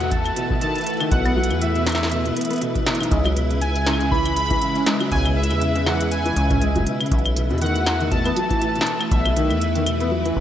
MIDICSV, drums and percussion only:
0, 0, Header, 1, 2, 480
1, 0, Start_track
1, 0, Tempo, 500000
1, 1070, Time_signature, 4, 2, 24, 8
1, 9986, End_track
2, 0, Start_track
2, 0, Title_t, "Drums"
2, 5, Note_on_c, 9, 42, 41
2, 101, Note_off_c, 9, 42, 0
2, 110, Note_on_c, 9, 36, 127
2, 110, Note_on_c, 9, 42, 66
2, 206, Note_off_c, 9, 36, 0
2, 206, Note_off_c, 9, 42, 0
2, 245, Note_on_c, 9, 42, 40
2, 245, Note_on_c, 9, 75, 51
2, 341, Note_off_c, 9, 42, 0
2, 341, Note_off_c, 9, 75, 0
2, 350, Note_on_c, 9, 42, 98
2, 446, Note_off_c, 9, 42, 0
2, 485, Note_on_c, 9, 36, 106
2, 581, Note_off_c, 9, 36, 0
2, 590, Note_on_c, 9, 42, 71
2, 686, Note_off_c, 9, 42, 0
2, 724, Note_on_c, 9, 42, 38
2, 751, Note_off_c, 9, 42, 0
2, 751, Note_on_c, 9, 42, 32
2, 778, Note_off_c, 9, 42, 0
2, 778, Note_on_c, 9, 42, 26
2, 804, Note_off_c, 9, 42, 0
2, 804, Note_on_c, 9, 42, 22
2, 830, Note_off_c, 9, 42, 0
2, 830, Note_on_c, 9, 42, 97
2, 864, Note_off_c, 9, 42, 0
2, 864, Note_on_c, 9, 42, 14
2, 897, Note_off_c, 9, 42, 0
2, 897, Note_on_c, 9, 42, 12
2, 931, Note_off_c, 9, 42, 0
2, 931, Note_on_c, 9, 42, 10
2, 965, Note_off_c, 9, 42, 0
2, 965, Note_on_c, 9, 42, 40
2, 965, Note_on_c, 9, 75, 79
2, 1061, Note_off_c, 9, 42, 0
2, 1061, Note_off_c, 9, 75, 0
2, 1070, Note_on_c, 9, 36, 124
2, 1070, Note_on_c, 9, 42, 66
2, 1166, Note_off_c, 9, 36, 0
2, 1166, Note_off_c, 9, 42, 0
2, 1205, Note_on_c, 9, 42, 40
2, 1205, Note_on_c, 9, 75, 74
2, 1301, Note_off_c, 9, 42, 0
2, 1301, Note_off_c, 9, 75, 0
2, 1378, Note_on_c, 9, 42, 93
2, 1445, Note_off_c, 9, 42, 0
2, 1445, Note_on_c, 9, 42, 38
2, 1445, Note_on_c, 9, 75, 36
2, 1541, Note_off_c, 9, 42, 0
2, 1541, Note_off_c, 9, 75, 0
2, 1550, Note_on_c, 9, 42, 68
2, 1646, Note_off_c, 9, 42, 0
2, 1685, Note_on_c, 9, 42, 40
2, 1781, Note_off_c, 9, 42, 0
2, 1791, Note_on_c, 9, 38, 113
2, 1791, Note_on_c, 9, 42, 85
2, 1791, Note_on_c, 9, 75, 32
2, 1817, Note_off_c, 9, 42, 0
2, 1817, Note_on_c, 9, 42, 67
2, 1836, Note_off_c, 9, 75, 0
2, 1836, Note_on_c, 9, 75, 42
2, 1870, Note_off_c, 9, 38, 0
2, 1870, Note_off_c, 9, 75, 0
2, 1870, Note_on_c, 9, 38, 88
2, 1870, Note_on_c, 9, 75, 56
2, 1898, Note_off_c, 9, 42, 0
2, 1898, Note_on_c, 9, 42, 37
2, 1925, Note_off_c, 9, 42, 0
2, 1925, Note_on_c, 9, 42, 19
2, 1946, Note_off_c, 9, 42, 0
2, 1946, Note_on_c, 9, 42, 21
2, 1951, Note_off_c, 9, 38, 0
2, 1951, Note_on_c, 9, 38, 78
2, 1966, Note_off_c, 9, 75, 0
2, 1968, Note_off_c, 9, 42, 0
2, 1968, Note_on_c, 9, 42, 25
2, 1988, Note_off_c, 9, 42, 0
2, 1988, Note_on_c, 9, 42, 29
2, 2010, Note_off_c, 9, 42, 0
2, 2010, Note_on_c, 9, 42, 33
2, 2031, Note_off_c, 9, 42, 0
2, 2031, Note_on_c, 9, 42, 67
2, 2047, Note_off_c, 9, 38, 0
2, 2127, Note_off_c, 9, 42, 0
2, 2165, Note_on_c, 9, 42, 39
2, 2261, Note_off_c, 9, 42, 0
2, 2270, Note_on_c, 9, 42, 89
2, 2315, Note_off_c, 9, 42, 0
2, 2315, Note_on_c, 9, 42, 71
2, 2350, Note_off_c, 9, 42, 0
2, 2350, Note_on_c, 9, 42, 61
2, 2405, Note_off_c, 9, 42, 0
2, 2405, Note_on_c, 9, 42, 50
2, 2431, Note_off_c, 9, 42, 0
2, 2431, Note_on_c, 9, 42, 40
2, 2458, Note_off_c, 9, 42, 0
2, 2458, Note_on_c, 9, 42, 40
2, 2475, Note_off_c, 9, 42, 0
2, 2475, Note_on_c, 9, 42, 33
2, 2510, Note_off_c, 9, 42, 0
2, 2510, Note_on_c, 9, 42, 67
2, 2606, Note_off_c, 9, 42, 0
2, 2645, Note_on_c, 9, 36, 88
2, 2645, Note_on_c, 9, 42, 39
2, 2741, Note_off_c, 9, 36, 0
2, 2741, Note_off_c, 9, 42, 0
2, 2750, Note_on_c, 9, 38, 127
2, 2750, Note_on_c, 9, 42, 43
2, 2830, Note_off_c, 9, 42, 0
2, 2830, Note_on_c, 9, 42, 58
2, 2846, Note_off_c, 9, 38, 0
2, 2885, Note_off_c, 9, 42, 0
2, 2885, Note_on_c, 9, 42, 38
2, 2885, Note_on_c, 9, 75, 75
2, 2910, Note_off_c, 9, 42, 0
2, 2910, Note_on_c, 9, 42, 74
2, 2981, Note_off_c, 9, 75, 0
2, 2990, Note_off_c, 9, 42, 0
2, 2990, Note_on_c, 9, 36, 118
2, 2990, Note_on_c, 9, 42, 62
2, 3086, Note_off_c, 9, 36, 0
2, 3086, Note_off_c, 9, 42, 0
2, 3125, Note_on_c, 9, 42, 39
2, 3125, Note_on_c, 9, 75, 78
2, 3221, Note_off_c, 9, 42, 0
2, 3221, Note_off_c, 9, 75, 0
2, 3231, Note_on_c, 9, 42, 93
2, 3327, Note_off_c, 9, 42, 0
2, 3365, Note_on_c, 9, 42, 39
2, 3461, Note_off_c, 9, 42, 0
2, 3470, Note_on_c, 9, 42, 68
2, 3566, Note_off_c, 9, 42, 0
2, 3605, Note_on_c, 9, 42, 39
2, 3701, Note_off_c, 9, 42, 0
2, 3710, Note_on_c, 9, 38, 110
2, 3710, Note_on_c, 9, 42, 84
2, 3778, Note_on_c, 9, 75, 70
2, 3806, Note_off_c, 9, 38, 0
2, 3806, Note_off_c, 9, 42, 0
2, 3845, Note_on_c, 9, 42, 39
2, 3874, Note_off_c, 9, 75, 0
2, 3941, Note_off_c, 9, 42, 0
2, 3950, Note_on_c, 9, 36, 117
2, 4046, Note_off_c, 9, 36, 0
2, 4085, Note_on_c, 9, 42, 62
2, 4085, Note_on_c, 9, 75, 51
2, 4181, Note_off_c, 9, 42, 0
2, 4181, Note_off_c, 9, 75, 0
2, 4190, Note_on_c, 9, 42, 91
2, 4286, Note_off_c, 9, 42, 0
2, 4325, Note_on_c, 9, 36, 101
2, 4325, Note_on_c, 9, 42, 41
2, 4421, Note_off_c, 9, 36, 0
2, 4421, Note_off_c, 9, 42, 0
2, 4431, Note_on_c, 9, 42, 65
2, 4527, Note_off_c, 9, 42, 0
2, 4565, Note_on_c, 9, 42, 38
2, 4661, Note_off_c, 9, 42, 0
2, 4670, Note_on_c, 9, 38, 127
2, 4670, Note_on_c, 9, 42, 94
2, 4766, Note_off_c, 9, 38, 0
2, 4766, Note_off_c, 9, 42, 0
2, 4805, Note_on_c, 9, 42, 38
2, 4805, Note_on_c, 9, 75, 76
2, 4901, Note_off_c, 9, 42, 0
2, 4901, Note_off_c, 9, 75, 0
2, 4910, Note_on_c, 9, 36, 115
2, 4911, Note_on_c, 9, 42, 62
2, 5006, Note_off_c, 9, 36, 0
2, 5007, Note_off_c, 9, 42, 0
2, 5045, Note_on_c, 9, 42, 40
2, 5045, Note_on_c, 9, 75, 77
2, 5141, Note_off_c, 9, 42, 0
2, 5141, Note_off_c, 9, 75, 0
2, 5218, Note_on_c, 9, 42, 89
2, 5285, Note_off_c, 9, 42, 0
2, 5285, Note_on_c, 9, 42, 39
2, 5285, Note_on_c, 9, 75, 37
2, 5381, Note_off_c, 9, 42, 0
2, 5381, Note_off_c, 9, 75, 0
2, 5390, Note_on_c, 9, 42, 66
2, 5486, Note_off_c, 9, 42, 0
2, 5525, Note_on_c, 9, 42, 39
2, 5621, Note_off_c, 9, 42, 0
2, 5630, Note_on_c, 9, 38, 105
2, 5630, Note_on_c, 9, 75, 71
2, 5726, Note_off_c, 9, 38, 0
2, 5726, Note_off_c, 9, 75, 0
2, 5765, Note_on_c, 9, 42, 90
2, 5861, Note_off_c, 9, 42, 0
2, 5870, Note_on_c, 9, 42, 66
2, 5966, Note_off_c, 9, 42, 0
2, 6005, Note_on_c, 9, 42, 38
2, 6101, Note_off_c, 9, 42, 0
2, 6110, Note_on_c, 9, 42, 88
2, 6206, Note_off_c, 9, 42, 0
2, 6245, Note_on_c, 9, 36, 105
2, 6245, Note_on_c, 9, 42, 40
2, 6245, Note_on_c, 9, 45, 97
2, 6341, Note_off_c, 9, 36, 0
2, 6341, Note_off_c, 9, 42, 0
2, 6341, Note_off_c, 9, 45, 0
2, 6351, Note_on_c, 9, 42, 64
2, 6447, Note_off_c, 9, 42, 0
2, 6485, Note_on_c, 9, 36, 37
2, 6485, Note_on_c, 9, 42, 38
2, 6506, Note_off_c, 9, 36, 0
2, 6506, Note_on_c, 9, 36, 45
2, 6527, Note_off_c, 9, 36, 0
2, 6527, Note_on_c, 9, 36, 54
2, 6548, Note_off_c, 9, 36, 0
2, 6548, Note_on_c, 9, 36, 61
2, 6569, Note_off_c, 9, 36, 0
2, 6569, Note_on_c, 9, 36, 71
2, 6581, Note_off_c, 9, 42, 0
2, 6591, Note_on_c, 9, 42, 93
2, 6665, Note_off_c, 9, 36, 0
2, 6687, Note_off_c, 9, 42, 0
2, 6725, Note_on_c, 9, 42, 36
2, 6725, Note_on_c, 9, 75, 78
2, 6778, Note_off_c, 9, 42, 0
2, 6778, Note_on_c, 9, 42, 31
2, 6821, Note_off_c, 9, 75, 0
2, 6830, Note_on_c, 9, 36, 113
2, 6831, Note_off_c, 9, 42, 0
2, 6831, Note_on_c, 9, 42, 64
2, 6898, Note_off_c, 9, 42, 0
2, 6898, Note_on_c, 9, 42, 20
2, 6926, Note_off_c, 9, 36, 0
2, 6965, Note_off_c, 9, 42, 0
2, 6965, Note_on_c, 9, 42, 40
2, 6965, Note_on_c, 9, 75, 81
2, 7061, Note_off_c, 9, 42, 0
2, 7061, Note_off_c, 9, 75, 0
2, 7070, Note_on_c, 9, 42, 91
2, 7166, Note_off_c, 9, 42, 0
2, 7205, Note_on_c, 9, 42, 18
2, 7275, Note_off_c, 9, 42, 0
2, 7275, Note_on_c, 9, 42, 24
2, 7311, Note_off_c, 9, 42, 0
2, 7311, Note_on_c, 9, 42, 68
2, 7355, Note_off_c, 9, 42, 0
2, 7355, Note_on_c, 9, 42, 31
2, 7445, Note_off_c, 9, 42, 0
2, 7445, Note_on_c, 9, 42, 39
2, 7541, Note_off_c, 9, 42, 0
2, 7550, Note_on_c, 9, 38, 110
2, 7550, Note_on_c, 9, 42, 88
2, 7550, Note_on_c, 9, 75, 74
2, 7646, Note_off_c, 9, 38, 0
2, 7646, Note_off_c, 9, 42, 0
2, 7646, Note_off_c, 9, 75, 0
2, 7685, Note_on_c, 9, 42, 39
2, 7781, Note_off_c, 9, 42, 0
2, 7790, Note_on_c, 9, 36, 114
2, 7790, Note_on_c, 9, 42, 64
2, 7886, Note_off_c, 9, 36, 0
2, 7886, Note_off_c, 9, 42, 0
2, 7925, Note_on_c, 9, 42, 38
2, 7925, Note_on_c, 9, 75, 54
2, 8021, Note_off_c, 9, 42, 0
2, 8021, Note_off_c, 9, 75, 0
2, 8030, Note_on_c, 9, 42, 93
2, 8126, Note_off_c, 9, 42, 0
2, 8165, Note_on_c, 9, 36, 100
2, 8165, Note_on_c, 9, 42, 40
2, 8261, Note_off_c, 9, 36, 0
2, 8261, Note_off_c, 9, 42, 0
2, 8271, Note_on_c, 9, 42, 67
2, 8367, Note_off_c, 9, 42, 0
2, 8405, Note_on_c, 9, 42, 40
2, 8458, Note_on_c, 9, 38, 114
2, 8501, Note_off_c, 9, 42, 0
2, 8510, Note_on_c, 9, 42, 98
2, 8554, Note_off_c, 9, 38, 0
2, 8606, Note_off_c, 9, 42, 0
2, 8645, Note_on_c, 9, 42, 41
2, 8645, Note_on_c, 9, 75, 85
2, 8741, Note_off_c, 9, 42, 0
2, 8741, Note_off_c, 9, 75, 0
2, 8750, Note_on_c, 9, 36, 114
2, 8750, Note_on_c, 9, 42, 67
2, 8846, Note_off_c, 9, 36, 0
2, 8846, Note_off_c, 9, 42, 0
2, 8885, Note_on_c, 9, 42, 42
2, 8885, Note_on_c, 9, 75, 83
2, 8981, Note_off_c, 9, 42, 0
2, 8981, Note_off_c, 9, 75, 0
2, 8990, Note_on_c, 9, 42, 96
2, 9086, Note_off_c, 9, 42, 0
2, 9125, Note_on_c, 9, 42, 41
2, 9125, Note_on_c, 9, 75, 39
2, 9221, Note_off_c, 9, 42, 0
2, 9221, Note_off_c, 9, 75, 0
2, 9230, Note_on_c, 9, 42, 71
2, 9326, Note_off_c, 9, 42, 0
2, 9365, Note_on_c, 9, 42, 42
2, 9461, Note_off_c, 9, 42, 0
2, 9470, Note_on_c, 9, 42, 91
2, 9470, Note_on_c, 9, 75, 77
2, 9566, Note_off_c, 9, 42, 0
2, 9566, Note_off_c, 9, 75, 0
2, 9605, Note_on_c, 9, 42, 42
2, 9701, Note_off_c, 9, 42, 0
2, 9845, Note_on_c, 9, 42, 39
2, 9941, Note_off_c, 9, 42, 0
2, 9986, End_track
0, 0, End_of_file